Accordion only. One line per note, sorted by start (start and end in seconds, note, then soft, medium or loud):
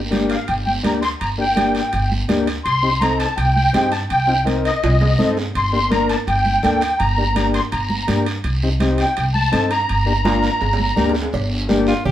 0.29 0.47 F5 medium
0.47 0.55 G5 medium
0.66 0.74 G5 medium
0.85 0.93 A#5 medium
1.02 1.10 C6 medium
1.21 1.29 A#5 medium
1.40 1.73 G5 medium
1.77 2.10 G5 medium
2.64 3.02 C6 loud
3.00 3.18 A#5 medium
3.19 3.36 A5 medium
3.37 3.54 G5 medium
3.55 3.89 G5 medium
3.91 4.00 A5 medium
4.10 4.44 G5 loud
4.65 5.33 D#5 medium
5.56 5.72 C6 medium
5.73 5.90 C6 medium
5.91 6.08 A#5 medium
6.10 6.18 A5 medium
6.28 7.02 G5 medium
6.99 7.50 A#5 medium
7.54 7.62 C6 medium
7.72 8.23 A#5 medium
8.99 9.15 G5 medium
9.17 9.25 G5 medium
9.34 9.68 A5 loud
9.71 11.11 A#5 medium